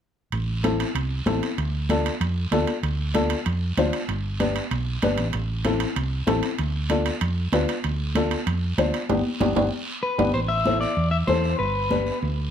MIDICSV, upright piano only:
0, 0, Header, 1, 2, 480
1, 0, Start_track
1, 0, Key_signature, 0, "minor"
1, 0, Tempo, 312989
1, 508, Time_signature, 4, 2, 24, 8
1, 19181, End_track
2, 0, Start_track
2, 0, Title_t, "Upright piano"
2, 0, Program_c, 0, 0
2, 973, Note_on_c, 0, 60, 78
2, 977, Note_on_c, 0, 64, 73
2, 984, Note_on_c, 0, 69, 83
2, 1316, Note_off_c, 0, 60, 0
2, 1318, Note_off_c, 0, 64, 0
2, 1322, Note_off_c, 0, 69, 0
2, 1931, Note_on_c, 0, 60, 85
2, 1938, Note_on_c, 0, 64, 71
2, 1943, Note_on_c, 0, 69, 87
2, 2275, Note_off_c, 0, 60, 0
2, 2278, Note_off_c, 0, 64, 0
2, 2281, Note_off_c, 0, 69, 0
2, 2910, Note_on_c, 0, 62, 81
2, 2915, Note_on_c, 0, 65, 68
2, 2921, Note_on_c, 0, 69, 90
2, 3244, Note_off_c, 0, 62, 0
2, 3247, Note_off_c, 0, 65, 0
2, 3249, Note_off_c, 0, 69, 0
2, 3862, Note_on_c, 0, 62, 82
2, 3870, Note_on_c, 0, 65, 74
2, 3877, Note_on_c, 0, 69, 95
2, 4200, Note_off_c, 0, 62, 0
2, 4204, Note_off_c, 0, 65, 0
2, 4208, Note_off_c, 0, 69, 0
2, 4816, Note_on_c, 0, 62, 80
2, 4827, Note_on_c, 0, 65, 75
2, 4832, Note_on_c, 0, 69, 94
2, 5157, Note_off_c, 0, 62, 0
2, 5162, Note_off_c, 0, 65, 0
2, 5165, Note_off_c, 0, 69, 0
2, 5788, Note_on_c, 0, 62, 85
2, 5795, Note_on_c, 0, 65, 79
2, 5800, Note_on_c, 0, 72, 87
2, 6123, Note_off_c, 0, 62, 0
2, 6127, Note_off_c, 0, 65, 0
2, 6129, Note_off_c, 0, 72, 0
2, 6741, Note_on_c, 0, 62, 83
2, 6747, Note_on_c, 0, 67, 70
2, 6755, Note_on_c, 0, 71, 78
2, 7079, Note_off_c, 0, 62, 0
2, 7082, Note_off_c, 0, 67, 0
2, 7086, Note_off_c, 0, 71, 0
2, 7707, Note_on_c, 0, 62, 85
2, 7714, Note_on_c, 0, 67, 67
2, 7719, Note_on_c, 0, 71, 89
2, 8042, Note_off_c, 0, 62, 0
2, 8045, Note_off_c, 0, 67, 0
2, 8048, Note_off_c, 0, 71, 0
2, 8656, Note_on_c, 0, 60, 73
2, 8664, Note_on_c, 0, 64, 73
2, 8670, Note_on_c, 0, 69, 78
2, 8997, Note_off_c, 0, 60, 0
2, 9000, Note_off_c, 0, 64, 0
2, 9003, Note_off_c, 0, 69, 0
2, 9609, Note_on_c, 0, 60, 84
2, 9615, Note_on_c, 0, 64, 73
2, 9621, Note_on_c, 0, 69, 93
2, 9953, Note_off_c, 0, 60, 0
2, 9956, Note_off_c, 0, 64, 0
2, 9958, Note_off_c, 0, 69, 0
2, 10575, Note_on_c, 0, 62, 79
2, 10582, Note_on_c, 0, 65, 71
2, 10590, Note_on_c, 0, 69, 77
2, 10916, Note_off_c, 0, 62, 0
2, 10919, Note_off_c, 0, 65, 0
2, 10923, Note_off_c, 0, 69, 0
2, 11538, Note_on_c, 0, 62, 76
2, 11547, Note_on_c, 0, 65, 80
2, 11554, Note_on_c, 0, 71, 91
2, 11877, Note_off_c, 0, 62, 0
2, 11881, Note_off_c, 0, 65, 0
2, 11885, Note_off_c, 0, 71, 0
2, 12502, Note_on_c, 0, 62, 73
2, 12514, Note_on_c, 0, 65, 71
2, 12517, Note_on_c, 0, 69, 89
2, 12839, Note_off_c, 0, 62, 0
2, 12845, Note_off_c, 0, 65, 0
2, 12846, Note_off_c, 0, 69, 0
2, 13462, Note_on_c, 0, 62, 83
2, 13471, Note_on_c, 0, 65, 78
2, 13475, Note_on_c, 0, 72, 91
2, 13798, Note_off_c, 0, 62, 0
2, 13803, Note_off_c, 0, 65, 0
2, 13805, Note_off_c, 0, 72, 0
2, 13944, Note_on_c, 0, 59, 89
2, 13944, Note_on_c, 0, 62, 85
2, 13946, Note_on_c, 0, 67, 86
2, 14097, Note_off_c, 0, 59, 0
2, 14097, Note_off_c, 0, 62, 0
2, 14098, Note_off_c, 0, 67, 0
2, 14419, Note_on_c, 0, 67, 93
2, 14421, Note_on_c, 0, 59, 85
2, 14424, Note_on_c, 0, 62, 84
2, 14574, Note_off_c, 0, 67, 0
2, 14575, Note_off_c, 0, 59, 0
2, 14577, Note_off_c, 0, 62, 0
2, 14659, Note_on_c, 0, 59, 86
2, 14659, Note_on_c, 0, 67, 85
2, 14663, Note_on_c, 0, 62, 91
2, 14814, Note_off_c, 0, 59, 0
2, 14814, Note_off_c, 0, 67, 0
2, 14816, Note_off_c, 0, 62, 0
2, 15617, Note_on_c, 0, 59, 86
2, 15617, Note_on_c, 0, 67, 89
2, 15620, Note_on_c, 0, 62, 92
2, 15773, Note_off_c, 0, 59, 0
2, 15773, Note_off_c, 0, 67, 0
2, 15774, Note_off_c, 0, 62, 0
2, 16341, Note_on_c, 0, 64, 67
2, 16347, Note_on_c, 0, 69, 58
2, 16356, Note_on_c, 0, 72, 75
2, 16678, Note_off_c, 0, 64, 0
2, 16681, Note_off_c, 0, 69, 0
2, 16685, Note_off_c, 0, 72, 0
2, 17307, Note_on_c, 0, 64, 69
2, 17310, Note_on_c, 0, 69, 72
2, 17321, Note_on_c, 0, 72, 82
2, 17641, Note_off_c, 0, 64, 0
2, 17642, Note_off_c, 0, 69, 0
2, 17648, Note_off_c, 0, 72, 0
2, 18253, Note_on_c, 0, 62, 68
2, 18260, Note_on_c, 0, 67, 61
2, 18267, Note_on_c, 0, 71, 82
2, 18594, Note_off_c, 0, 62, 0
2, 18597, Note_off_c, 0, 67, 0
2, 18601, Note_off_c, 0, 71, 0
2, 19181, End_track
0, 0, End_of_file